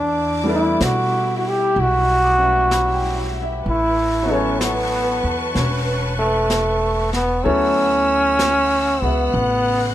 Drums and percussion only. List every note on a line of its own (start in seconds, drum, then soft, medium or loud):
0.81 brush sweep soft
0.81 snare soft
0.81 hi-hat pedal medium
1.76 brush sweep soft
2.71 brush sweep soft
2.71 snare soft
2.71 hi-hat pedal soft
3.66 brush sweep soft
4.61 brush sweep soft
4.61 snare soft
4.61 hi-hat pedal soft
5.55 brush sweep soft
5.55 snare soft
6.50 brush sweep soft
6.50 snare soft
6.50 hi-hat pedal medium
7.13 snare soft
7.44 brush sweep soft
8.39 brush sweep soft
8.39 snare soft
8.39 hi-hat pedal soft
9.35 brush sweep soft